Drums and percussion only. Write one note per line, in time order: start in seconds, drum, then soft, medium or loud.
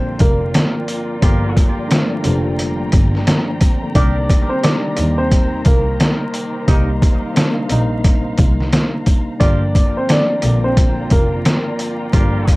0.19 kick loud
0.19 closed hi-hat medium
0.19 sleigh bells medium
0.54 snare loud
0.54 closed hi-hat medium
0.54 sleigh bells soft
0.88 closed hi-hat medium
0.88 sleigh bells medium
1.22 kick loud
1.22 closed hi-hat medium
1.22 sleigh bells medium
1.57 kick medium
1.57 closed hi-hat medium
1.57 sleigh bells medium
1.91 snare loud
1.91 closed hi-hat loud
1.91 sleigh bells medium
2.24 closed hi-hat medium
2.24 sleigh bells medium
2.59 closed hi-hat loud
2.59 sleigh bells soft
2.92 kick loud
2.92 closed hi-hat medium
2.92 sleigh bells medium
3.15 snare soft
3.27 snare loud
3.27 closed hi-hat medium
3.27 sleigh bells medium
3.61 kick medium
3.61 closed hi-hat medium
3.61 sleigh bells medium
3.95 kick loud
3.95 closed hi-hat medium
3.95 sleigh bells medium
4.29 kick medium
4.29 closed hi-hat medium
4.29 sleigh bells medium
4.63 snare loud
4.63 closed hi-hat loud
4.63 sleigh bells soft
4.97 closed hi-hat medium
4.97 sleigh bells medium
5.31 kick medium
5.31 closed hi-hat medium
5.31 sleigh bells soft
5.65 kick loud
5.65 closed hi-hat medium
5.65 sleigh bells medium
6.00 snare loud
6.00 closed hi-hat medium
6.00 sleigh bells soft
6.34 closed hi-hat medium
6.34 sleigh bells medium
6.68 kick loud
6.68 closed hi-hat medium
6.68 sleigh bells medium
7.02 kick loud
7.02 closed hi-hat medium
7.02 sleigh bells medium
7.36 snare loud
7.36 closed hi-hat loud
7.36 sleigh bells medium
7.69 closed hi-hat medium
7.69 sleigh bells medium
8.04 kick loud
8.04 closed hi-hat medium
8.04 sleigh bells soft
8.38 kick loud
8.38 closed hi-hat medium
8.38 sleigh bells medium
8.61 snare soft
8.72 snare loud
8.72 closed hi-hat medium
8.72 sleigh bells medium
9.06 kick medium
9.06 closed hi-hat medium
9.06 sleigh bells medium
9.41 kick loud
9.41 closed hi-hat medium
9.41 sleigh bells medium
9.75 kick loud
9.75 closed hi-hat medium
9.75 sleigh bells medium
10.09 snare loud
10.09 closed hi-hat loud
10.09 sleigh bells medium
10.42 closed hi-hat medium
10.42 sleigh bells medium
10.77 kick loud
10.77 closed hi-hat loud
10.77 sleigh bells medium
11.10 kick loud
11.10 closed hi-hat medium
11.10 sleigh bells medium
11.45 snare loud
11.45 closed hi-hat medium
11.45 sleigh bells soft
11.79 closed hi-hat medium
11.79 sleigh bells medium
12.13 kick loud
12.13 closed hi-hat loud
12.13 sleigh bells medium
12.47 kick medium
12.47 closed hi-hat medium
12.47 sleigh bells medium